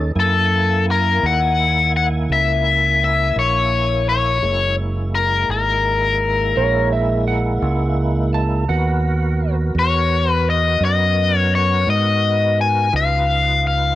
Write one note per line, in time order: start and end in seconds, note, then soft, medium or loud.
0.00 0.13 D#2 medium
0.00 0.12 C#4 medium
0.00 0.12 D#4 medium
0.00 0.12 A4 medium
0.15 1.19 F#2 medium
0.15 4.38 A#3 medium
0.15 4.38 E4 medium
0.15 4.38 G#5 medium
0.20 0.85 A4 medium
0.91 1.26 A#4 medium
1.23 2.26 D#2 medium
1.23 1.91 F#5 medium
1.97 2.06 F#5 loud
2.29 3.33 C#2 medium
2.29 3.03 E5 medium
3.04 3.36 E5 medium
3.36 4.39 A#1 medium
3.36 4.08 C#5 medium
4.09 4.75 C#5 medium
4.42 5.46 F#1 medium
4.42 8.65 G#3 medium
4.42 8.65 A#3 medium
4.42 8.65 E4 medium
5.15 5.50 A#4 medium
5.49 6.52 G#1 medium
5.49 6.88 A#4 medium
6.56 7.59 A#1 medium
6.56 6.91 C#5 medium
6.92 7.26 E5 medium
7.28 8.30 F#5 medium
7.62 8.65 C#2 medium
8.34 8.68 A5 medium
8.68 9.72 D#2 medium
8.68 12.90 B3 medium
8.68 12.89 F#4 medium
8.68 12.90 A#4 medium
8.68 9.55 F#5 medium
9.75 10.78 E2 medium
9.79 10.32 C#5 medium
10.32 10.50 B4 medium
10.50 10.84 D#5 medium
10.81 11.84 F#2 medium
10.85 11.38 D#5 medium
11.38 11.55 C#5 medium
11.55 11.90 C#5 medium
11.87 12.90 G#2 medium
11.87 12.61 D#5 medium
12.61 12.93 G#5 medium
12.93 13.95 C#2 medium
12.93 13.95 D#4 medium
12.93 13.95 F4 medium
12.93 13.95 B4 medium
12.93 13.66 F5 medium
13.67 13.95 F5 medium